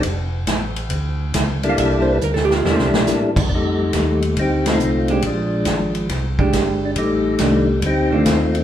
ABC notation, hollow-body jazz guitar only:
X:1
M:4/4
L:1/16
Q:"Swing" 1/4=139
K:Fmix
V:1 name="Hollow-body jazz guitar"
z12 z3 f | =e d c =B _B A G F =E C z6 | z12 z2 [_A,DG]2 | z8 z2 [_A,DG]6 |
z4 [E,A,D]2 z4 [E,A,D]2 z4 |]